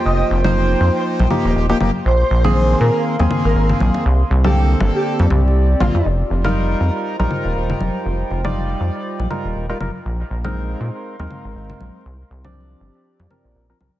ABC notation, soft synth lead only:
X:1
M:4/4
L:1/16
Q:"Swing 16ths" 1/4=120
K:Fdor
V:1 name="Soft synth lead"
e2 z4 c c z8 | c6 B2 z3 B B z3 | z3 G2 z2 G2 z4 z F2 | z16 |
z16 | z16 | z16 |]